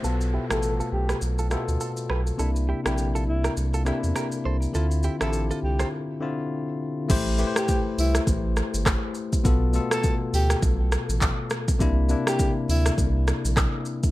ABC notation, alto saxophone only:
X:1
M:4/4
L:1/16
Q:"Swing 16ths" 1/4=102
K:Aphr
V:1 name="Alto saxophone"
z3 A2 z G2 z8 | z3 G2 z E2 z8 | z3 A2 z G2 z8 | z3 G2 z E2 z8 |
z3 A2 z G2 z8 | z3 G2 z E2 z8 |]